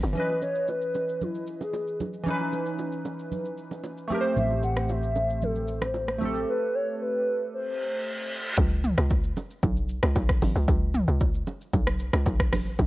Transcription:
0.03 0.15 G1 loud
0.03 shaker medium
0.13 2.21 E3 medium
0.13 2.22 C#4 medium
0.13 0.41 B4 loud
0.13 low conga medium
0.13 shaker medium
0.18 2.24 B4 medium
0.18 2.23 D#5 medium
0.30 high bongo soft
0.42 0.67 C#5 loud
0.42 low bongo soft
0.42 shaker medium
0.55 shaker medium
0.68 1.24 B4 loud
0.68 high bongo medium
0.68 shaker medium
0.81 shaker medium
0.95 low bongo medium
0.95 shaker medium
1.09 shaker soft
1.21 1.62 E4 medium
1.21 low conga medium
1.21 shaker medium
1.35 shaker soft
1.47 shaker medium
1.61 1.98 G#4 medium
1.61 low bongo medium
1.61 shaker soft
1.73 high bongo medium
1.73 shaker medium
1.87 shaker soft
2.00 high bongo medium
2.00 low conga medium
2.00 shaker medium
2.13 shaker medium
2.23 4.05 E3 medium
2.23 4.07 C#4 medium
2.23 low conga medium
2.23 shaker medium
2.28 4.08 D#4 medium
2.28 4.09 B4 medium
2.41 high bongo soft
2.53 low bongo soft
2.53 shaker medium
2.66 shaker medium
2.79 high bongo medium
2.79 shaker medium
2.92 shaker medium
3.05 low bongo medium
3.05 shaker medium
3.19 shaker soft
3.32 low conga medium
3.32 shaker medium
3.45 shaker soft
3.57 shaker medium
3.71 low bongo medium
3.71 shaker soft
3.84 high bongo medium
3.84 shaker medium
3.98 shaker soft
4.08 6.16 A3 medium
4.08 6.17 C4 medium
4.08 high bongo medium
4.08 low conga medium
4.08 shaker medium
4.12 6.18 G4 medium
4.12 4.19 A#4 medium
4.21 6.22 C5 medium
4.21 shaker medium
4.36 6.43 A1 medium
4.36 4.62 E5 loud
4.36 low conga medium
4.36 shaker medium
4.51 high bongo soft
4.63 4.92 F#5 loud
4.63 low bongo soft
4.63 shaker medium
4.76 cross-stick medium
4.76 shaker medium
4.89 5.45 E5 loud
4.89 high bongo medium
4.89 shaker medium
5.03 shaker medium
5.16 low bongo medium
5.16 shaker medium
5.30 shaker soft
5.42 5.85 A4 medium
5.42 low conga medium
5.42 shaker medium
5.55 shaker soft
5.68 shaker medium
5.82 6.22 C5 medium
5.82 cross-stick medium
5.82 low bongo medium
5.82 shaker soft
5.94 high bongo medium
5.94 shaker medium
6.08 cross-stick medium
6.08 shaker soft
6.18 8.26 A3 medium
6.18 8.27 C4 medium
6.18 high bongo medium
6.18 low conga medium
6.18 shaker medium
6.23 8.29 G4 medium
6.23 8.30 A4 medium
6.34 shaker medium
6.48 6.76 B4 loud
6.75 7.00 C#5 loud
7.01 7.50 B4 loud
7.53 8.28 C5 medium
7.53 reverse cymbal medium
8.58 8.95 C#2 loud
8.58 kick loud
8.58 low conga medium
8.58 shaker medium
8.84 mid tom loud
8.84 shaker loud
8.97 9.34 C#2 loud
8.97 cross-stick medium
8.97 shaker medium
9.10 kick loud
9.10 high bongo medium
9.10 shaker medium
9.24 shaker medium
9.37 low bongo medium
9.37 shaker medium
9.51 shaker medium
9.63 10.00 B1 loud
9.63 kick loud
9.63 low conga medium
9.63 shaker medium
9.77 shaker soft
9.89 shaker loud
10.03 10.15 C#2 medium
10.03 cross-stick loud
10.03 low bongo medium
10.03 shaker medium
10.15 10.40 B1 loud
10.15 kick loud
10.15 high bongo medium
10.15 shaker medium
10.29 kick medium
10.29 cross-stick medium
10.29 shaker soft
10.42 10.55 G#1 loud
10.42 open hi-hat medium
10.42 low conga medium
10.42 shaker medium
10.55 10.67 C#2 medium
10.55 shaker medium
10.68 11.05 C#2 loud
10.68 kick loud
10.68 low conga medium
10.68 shaker medium
10.94 mid tom loud
10.94 shaker medium
11.08 11.44 C#2 medium
11.08 shaker medium
11.20 kick loud
11.20 high bongo medium
11.20 shaker medium
11.34 shaker medium
11.47 low bongo medium
11.47 shaker medium
11.61 shaker medium
11.74 12.11 B1 loud
11.74 kick loud
11.74 low conga medium
11.74 shaker medium
11.87 cross-stick loud
11.87 shaker medium
12.00 shaker loud
12.13 12.25 C#2 medium
12.13 cross-stick loud
12.13 low bongo medium
12.13 shaker medium
12.26 12.54 B1 loud
12.26 kick loud
12.26 high bongo medium
12.26 shaker medium
12.40 kick medium
12.40 cross-stick loud
12.40 shaker soft
12.52 12.77 A1 loud
12.52 cross-stick loud
12.52 open hi-hat medium
12.52 low conga medium
12.52 shaker medium
12.66 shaker medium
12.79 12.87 A1 loud
12.79 kick loud
12.79 low conga medium
12.79 shaker medium

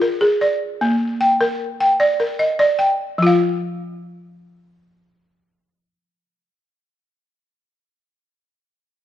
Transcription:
0.00 0.41 F4 medium
0.00 0.61 A#4 medium
0.21 0.61 G#4 medium
0.41 1.01 D5 medium
0.81 1.21 A#3 medium
1.21 1.79 G5 medium
1.41 1.80 A#4 medium
1.80 2.39 G5 medium
2.00 2.39 D5 medium
2.20 2.79 A#4 medium
2.39 2.98 D#5 medium
2.59 2.98 D5 medium
2.79 3.38 G5 medium
3.18 6.62 F3 medium
3.22 6.66 F4 medium
3.26 6.70 F5 medium

